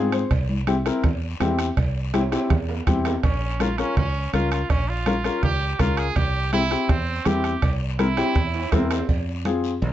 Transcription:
Already playing: G#2 C4 F4 G#4 F5
0.12 C5, bombo rim, short guiro
0.31 C2, bombo low, bombo rim, cowbell, long guiro
0.49 high conga
0.67 C4 E4 G4, bombo rim, high conga, short guiro
0.85 C4 E4 A#4, bombo rim, short guiro
1.04 E2, bombo low, bombo rim, cowbell, low conga, long guiro
1.40 E2 C4 E4 G4, bombo rim, high conga, low conga, low timbale, short guiro
1.59 bombo rim, short guiro
1.77 C2, bombo low, bombo rim, cowbell, long guiro
2.13 C4 E4 G4, bombo rim, high conga, high timbale, short guiro
2.31 C4 E4 G4, bombo rim, high timbale, short guiro
2.50 E2, bombo low, bombo rim, cowbell, low conga, low timbale, long guiro
2.69 low timbale
2.87 E2 C4 E4 G4, bombo low, bombo rim, high conga, short guiro
3.05 bombo rim, low timbale, short guiro
3.23 A#1 C#4, bombo low, bombo rim, cowbell, long guiro
3.60 C#4 F4 A#4, bombo rim, high conga, short guiro
3.78 C#4 F4 A#4, bombo rim, short guiro
3.97 C#2 C#4, bombo low, bombo rim, cowbell, low conga, long guiro
4.33 C#2 C#4 F4 A#4, bombo rim, high conga, short guiro
4.51 F4, bombo rim, short guiro
4.70 A#1 C#4, bombo low, bombo rim, cowbell, long guiro
4.89 F4
5.06 C#4 F4 A#4, bombo rim, high conga, short guiro
5.24 C#4 F4 A#4, bombo rim, short guiro
5.43 C#2 G4, bombo low, bombo rim, cowbell, low conga, long guiro
5.79 C#2 C#4 F4 A#4, bombo low, bombo rim, high conga, short guiro
5.97 G#4, bombo rim, short guiro
6.16 C2 G4, bombo low, bombo rim, cowbell, low conga, long guiro
6.53 C4 E4 G4, bombo rim, high conga, short guiro
6.71 C4 E4 G4, bombo rim, short guiro
6.89 E2 C4, bombo low, bombo rim, cowbell, low conga, long guiro
7.25 E2 C4 E4 G4, bombo rim, high conga, low conga, low timbale, short guiro
7.44 bombo rim, short guiro
7.62 C2, bombo low, bombo rim, cowbell, long guiro
7.99 C4 E4 A#4, bombo rim, high conga, short guiro
8.17 C4 E4 G4, bombo rim, high timbale, short guiro
8.35 E2, bombo low, bombo rim, cowbell, low conga, long guiro
8.54 high timbale
8.72 E2 C4 E4 A#4, bombo low, bombo rim, high conga, low conga, low timbale, short guiro
8.91 C4, bombo rim, low timbale, short guiro
9.09 F2, bombo low, cowbell, long guiro
9.45 C4 F4 G#4, bombo rim, high conga, short guiro
9.64 short guiro
9.82 C2, cowbell, low conga, long guiro

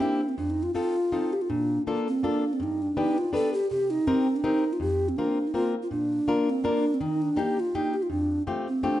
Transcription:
0.00 A#3 C4 D4 E4 G4
0.29 C4
0.38 F2 D4
0.50 D#4
0.63 F4
0.74 C4 D#4 F4 A4
1.12 C4 D#4 F4 A4
1.33 G4
1.42 F4
1.50 A#2 D4
1.87 A#3 D4 F4 A4
2.08 C4
2.23 A#3 D4 F4 A4
2.53 C4
2.60 G2 D#4
2.82 D4
2.97 B3 D4 D#4 G4 B4
3.18 F4
3.33 B3 D4 G4 A4 B4
3.54 G4
3.70 C3 G4
3.90 D#4
4.07 C4 D#4 G4 A#4
4.36 D4
4.44 C4 D#4 G4 A#4
4.73 F4
4.80 F2 G4
5.09 C4
5.17 A#3 C4 D4 F4 A#4
5.47 D#4
5.54 A#3 C4 F4 A#4
5.82 F4
5.91 A#2 D4
6.28 A#3 D4 F4 A#4
6.49 C4
6.64 A#3 D4 F4 A#4
6.94 C4
7.01 D#3 D#4
7.22 D4
7.36 A#3 D4 D#4 G4
7.60 F4
7.75 A#3 D4 D#4 G4
7.94 G4
8.03 F4
8.10 F2 D4
8.47 A3 C4 F4 G4
8.68 C4
8.83 A3 C4 D4 F4 G4

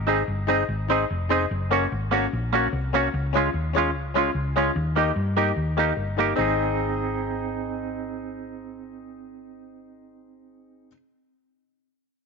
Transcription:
Already playing: G#1
0.07 C4 D#4 G#4 C5 D#5
0.28 G1
0.47 C4 D#4 G#4 C5 D#5
0.68 G#1
0.88 C4 D#4 G#4 C5 D#5
1.10 F1
1.29 C4 D#4 G#4 C5 D#5
1.51 F#1
1.70 A#3 C#4 F#4 A#4 C#5
1.92 G#1
2.11 A#3 C#4 F#4 A#4 C#5
2.33 A#1
2.53 A#3 C#4 F#4 A#4 C#5
2.72 C2 A#4 C#5
2.93 A#3 C#4 F#4 A#4 C#5
3.14 C#2
3.33 G#3 C#4 F4 G#4 C#5
3.38 F4
3.54 D#2
3.73 G#3 C#4 F4 G#4 C#5
3.77 C#4 F4
3.95 C#2
4.14 G#3 C#4 F4 G#4 C#5
4.35 C#2
4.56 G#3 C#4 F4 G#4 C#5
4.76 D#2
4.95 A#3 D#4 G4 A#4 D#5
5.16 G2
5.36 A#3 D#4 G4 A#4 D#5
5.56 D#2
5.77 A#3 D#4 G4 A#4 D#5
5.96 G1 A#4 D#5
6.17 A#3 D#4 G4 A#4 D#5
6.35 G#1 C4 D#4 G#4 C5 D#5
6.41 G#4

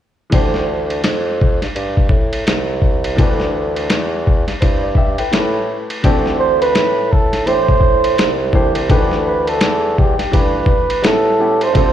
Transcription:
0.30 D2 E3 A3 D4 G4, kick, ride
0.35 C5
0.54 snare
0.90 ride
1.04 F2, snare, hi-hat pedal, ride
1.41 kick
1.61 G2, snare, ride
1.75 G2, ride
1.97 kick
2.09 A2, kick
2.33 ride
2.47 C2, snare, hi-hat pedal, ride
2.82 kick
3.04 ride
3.16 D2 E3 A3 D4 G4, kick, ride
3.20 B4
3.40 snare
3.76 ride
3.90 E2, snare, hi-hat pedal, ride
4.27 kick
4.47 G2, snare, ride
4.61 G2 E4 C5, kick, ride
4.83 D5
4.95 G4 E5, kick
5.18 A2 B4 G5, ride
5.31 A2 A3 C#4 E4 G4 A#4, snare, hi-hat pedal, ride
5.40 B4
5.90 ride
6.03 D2 E3 A3 C4 D4 G4, kick, ride
6.26 snare
6.39 C5
6.62 B4, ride
6.75 A2, snare, hi-hat pedal, ride
7.12 A4, kick
7.33 snare, ride
7.46 A2 E3 A3 D4 G4 C5, ride
7.68 kick
7.81 kick
8.04 ride
8.18 C2, snare, hi-hat pedal, ride
8.53 E3 A3 D4 G4 C5, kick
8.75 ride
8.89 D2 D#3 A3 D4 G4 B4, kick, ride
8.95 E3
9.11 snare
9.27 B4
9.47 A4, ride
9.61 E2, snare, hi-hat pedal, ride
9.98 G4, kick
10.18 G2, snare, ride
10.31 G2 E3 A3 D4 G4 B4, kick, ride
10.35 B4
10.66 kick
10.90 ride
11.02 A2 G3 B3 C#4 E4 A4, snare, hi-hat pedal, ride
11.07 A4
11.38 G3 B3 C#4 E4 G4
11.61 C5, ride
11.73 D2 D3 G3 C4 F4 A4, kick, ride

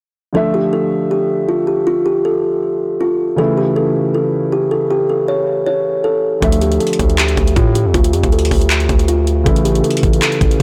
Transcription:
0.33 D3 F3 A3 A4
0.37 E5
0.54 G4
0.73 A4
1.11 G4
1.49 F4
1.67 G4
1.87 F4
2.06 G4
2.25 A4
3.01 F4
3.36 C#3 E3 A3 A4
3.40 E4
3.57 G4
3.76 A4
4.15 A4
4.52 G4
4.71 A4
4.90 G4
5.09 A4
5.28 C#5
5.66 C#5
6.04 A4
6.40 D2 D3 F3 A3 A4 E5, kick, closed hi-hat
6.52 closed hi-hat
6.61 G4, closed hi-hat
6.72 closed hi-hat
6.80 A4, closed hi-hat
6.87 closed hi-hat
6.93 closed hi-hat
6.99 D2, kick, closed hi-hat
7.10 closed hi-hat
7.18 G4, clap, closed hi-hat
7.28 closed hi-hat
7.37 D2, kick, closed hi-hat
7.47 closed hi-hat
7.56 A2 F4, kick, closed hi-hat
7.75 G4, closed hi-hat
7.85 F2
7.94 D2 F4, kick, closed hi-hat
8.04 closed hi-hat
8.13 F2 G4, closed hi-hat
8.23 D2, kick, closed hi-hat
8.32 A4, closed hi-hat
8.39 closed hi-hat
8.45 closed hi-hat
8.51 D2, kick, open hi-hat
8.61 closed hi-hat
8.70 clap, closed hi-hat
8.80 closed hi-hat
8.89 D2, kick, closed hi-hat
8.99 closed hi-hat
9.08 F4, closed hi-hat
9.27 closed hi-hat
9.44 A1 C#3 E3 A3 E4 A4, kick, closed hi-hat
9.56 closed hi-hat
9.65 G4, closed hi-hat
9.75 closed hi-hat
9.84 A4, closed hi-hat
9.91 closed hi-hat
9.97 closed hi-hat
10.03 A1, kick, closed hi-hat
10.13 closed hi-hat
10.22 A4, clap, closed hi-hat
10.32 closed hi-hat
10.41 A1, kick, closed hi-hat
10.51 closed hi-hat

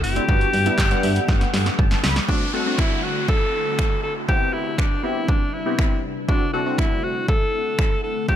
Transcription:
Already playing: D3 A3 C4 E4 F#4
0.04 F#1 G4, open hi-hat
0.16 A3 C4 D4 E4, closed hi-hat
0.28 G1 G3 B3 D4 F#4 A4 B4 F#5, kick
0.41 closed hi-hat
0.53 G2, open hi-hat
0.66 G3 B3 D4 E4, closed hi-hat
0.78 G1, kick, snare, clap
0.91 G3 B3 D4 F#5, closed hi-hat
1.03 G2 E5, open hi-hat
1.16 closed hi-hat
1.28 G1 F#5, kick, snare
1.41 snare, closed hi-hat
1.54 G2, snare, open hi-hat
1.66 snare, closed hi-hat
1.79 G1 A5, kick
1.91 snare, closed hi-hat
2.04 C#2 B5, snare, open hi-hat
2.16 snare, closed hi-hat
2.28 D3 A3 C4 D4 E4 F#4, kick, downlifter
2.53 A3 C4 D4 F#4 A4
2.66 A3 C4 D4 F#4
2.78 E4, finger snap, kick
3.04 F#4
3.28 A4, kick
3.79 finger snap, kick
4.03 A4
4.28 C3 G3 B3 C4 D4 E4 G4 B4, kick
4.54 E4
4.78 D4, finger snap, kick
5.03 B3 C4 E4 G4
5.28 D4, kick
5.54 E4
5.66 B3 C4 E4 G4
5.79 finger snap, kick
6.28 D3 A3 C4 D4 F#4 F#5, kick
6.53 A3 C4 D4 F#4 A4
6.66 A3 C4 D4 F#4
6.78 E4, finger snap, kick
7.04 F#4
7.28 A4, kick
7.79 finger snap, kick
8.04 A4
8.28 G3 B3 D4 F#4 G4, kick

